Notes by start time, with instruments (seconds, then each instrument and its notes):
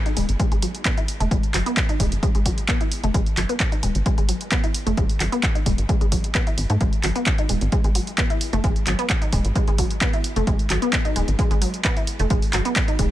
0.06 synth arpeggio sound D#4, closed hi-hat
0.17 analog synth bass D#1, synth arpeggio sound G#3, open hi-hat
0.29 analog synth bass G#1, closed hi-hat
0.40 synth arpeggio sound G#3, kick, closed hi-hat
0.52 analog synth bass G#1, synth arpeggio sound G#3, closed hi-hat
0.62 synth arpeggio sound F#3, open hi-hat
0.75 closed hi-hat
0.85 synth arpeggio sound B3, kick, clap, closed hi-hat
0.97 synth arpeggio sound E4, closed hi-hat
1.08 open hi-hat
1.20 analog synth bass F#1, synth arpeggio sound A3, closed hi-hat
1.31 analog synth bass G#1, synth arpeggio sound G#3, kick, closed hi-hat
1.43 closed hi-hat
1.54 analog synth bass G#1, synth arpeggio sound F#3, clap, open hi-hat
1.66 synth arpeggio sound B3, closed hi-hat
1.77 kick, clap, closed hi-hat
1.89 synth arpeggio sound D#4, closed hi-hat
2.00 analog synth bass D#1, synth arpeggio sound G#3, kick, open hi-hat
2.12 analog synth bass G#1, closed hi-hat
2.23 synth arpeggio sound G#3, kick, closed hi-hat
2.35 analog synth bass G#1, synth arpeggio sound G#3, closed hi-hat
2.46 synth arpeggio sound F#3, kick, open hi-hat
2.58 closed hi-hat
2.69 synth arpeggio sound B3, kick, clap, closed hi-hat
2.81 synth arpeggio sound E4, closed hi-hat
2.92 open hi-hat
3.04 analog synth bass F#1, synth arpeggio sound A3, closed hi-hat
3.14 analog synth bass G#1, synth arpeggio sound G#3, kick, closed hi-hat
3.26 closed hi-hat
3.37 analog synth bass G#1, synth arpeggio sound F#3, clap, open hi-hat
3.49 synth arpeggio sound B3, closed hi-hat
3.60 kick, clap, closed hi-hat
3.72 synth arpeggio sound D#4, closed hi-hat
3.83 analog synth bass D#1, synth arpeggio sound G#3, open hi-hat
3.95 analog synth bass G#1, closed hi-hat
4.06 synth arpeggio sound G#3, kick, closed hi-hat
4.18 analog synth bass G#1, synth arpeggio sound G#3, closed hi-hat
4.29 synth arpeggio sound F#3, open hi-hat
4.41 closed hi-hat
4.52 synth arpeggio sound B3, kick, clap, closed hi-hat
4.64 synth arpeggio sound E4, closed hi-hat
4.74 open hi-hat
4.87 analog synth bass F#1, synth arpeggio sound A3, closed hi-hat
4.97 analog synth bass G#1, synth arpeggio sound G#3, kick, closed hi-hat
5.09 open hi-hat
5.20 analog synth bass G#1, synth arpeggio sound F#3, clap, open hi-hat
5.32 synth arpeggio sound B3, closed hi-hat
5.43 kick, clap, closed hi-hat
5.55 synth arpeggio sound D#4, closed hi-hat
5.66 analog synth bass D#1, synth arpeggio sound G#3, kick, open hi-hat
5.78 analog synth bass G#1, closed hi-hat
5.89 synth arpeggio sound G#3, kick, closed hi-hat
6.01 analog synth bass G#1, synth arpeggio sound G#3, closed hi-hat
6.12 synth arpeggio sound F#3, kick, open hi-hat
6.24 closed hi-hat
6.35 synth arpeggio sound B3, kick, clap, closed hi-hat
6.47 synth arpeggio sound E4, closed hi-hat
6.58 analog synth bass G#1, open hi-hat
6.70 analog synth bass G#2, synth arpeggio sound A3, closed hi-hat
6.81 analog synth bass G#1, synth arpeggio sound G#3, kick, closed hi-hat
6.93 closed hi-hat
7.03 analog synth bass G#1, synth arpeggio sound F#3, clap, open hi-hat
7.16 synth arpeggio sound B3, closed hi-hat
7.26 kick, clap, closed hi-hat
7.38 synth arpeggio sound D#4, closed hi-hat
7.49 analog synth bass D#1, synth arpeggio sound G#3, open hi-hat
7.61 analog synth bass G#1, closed hi-hat
7.72 synth arpeggio sound G#3, kick, closed hi-hat
7.84 analog synth bass G#1, synth arpeggio sound G#3, closed hi-hat
7.95 synth arpeggio sound F#3, open hi-hat
8.07 closed hi-hat
8.18 synth arpeggio sound B3, kick, clap, closed hi-hat
8.30 synth arpeggio sound E4, closed hi-hat
8.41 open hi-hat
8.53 analog synth bass F#1, synth arpeggio sound A3, closed hi-hat
8.64 analog synth bass G#1, synth arpeggio sound G#3, kick, closed hi-hat
8.76 closed hi-hat
8.87 analog synth bass G#1, synth arpeggio sound F#3, clap, open hi-hat
8.99 synth arpeggio sound B3, closed hi-hat
9.10 kick, clap, closed hi-hat
9.22 synth arpeggio sound D#4, closed hi-hat
9.33 analog synth bass D#1, synth arpeggio sound G#3, kick, open hi-hat
9.45 analog synth bass G#1, closed hi-hat
9.56 synth arpeggio sound G#3, kick, closed hi-hat
9.68 analog synth bass G#1, synth arpeggio sound G#3, closed hi-hat
9.78 synth arpeggio sound F#3, kick, open hi-hat
9.90 closed hi-hat
10.01 synth arpeggio sound B3, kick, clap, closed hi-hat
10.13 synth arpeggio sound E4, closed hi-hat
10.24 open hi-hat
10.36 analog synth bass F#1, synth arpeggio sound A3, closed hi-hat
10.47 analog synth bass G#1, synth arpeggio sound G#3, kick, closed hi-hat
10.59 closed hi-hat
10.70 analog synth bass G#1, synth arpeggio sound F#3, clap, open hi-hat
10.82 synth arpeggio sound B3, closed hi-hat
10.93 kick, clap, closed hi-hat
11.05 synth arpeggio sound D#4, closed hi-hat
11.16 analog synth bass D#1, synth arpeggio sound G#3, open hi-hat
11.28 analog synth bass G#1, closed hi-hat
11.39 synth arpeggio sound G#3, kick, closed hi-hat
11.51 analog synth bass G#1, synth arpeggio sound G#3, closed hi-hat
11.62 synth arpeggio sound F#3, open hi-hat
11.74 closed hi-hat
11.85 synth arpeggio sound B3, kick, clap, closed hi-hat
11.97 synth arpeggio sound E4, closed hi-hat
12.07 open hi-hat
12.19 analog synth bass F#1, synth arpeggio sound A3, closed hi-hat
12.30 analog synth bass G#1, synth arpeggio sound G#3, kick, closed hi-hat
12.42 open hi-hat
12.53 analog synth bass G#1, synth arpeggio sound F#3, clap, open hi-hat
12.65 synth arpeggio sound B3, closed hi-hat
12.76 kick, clap, closed hi-hat
12.88 synth arpeggio sound D#4, closed hi-hat
12.99 analog synth bass D#1, synth arpeggio sound G#3, kick, open hi-hat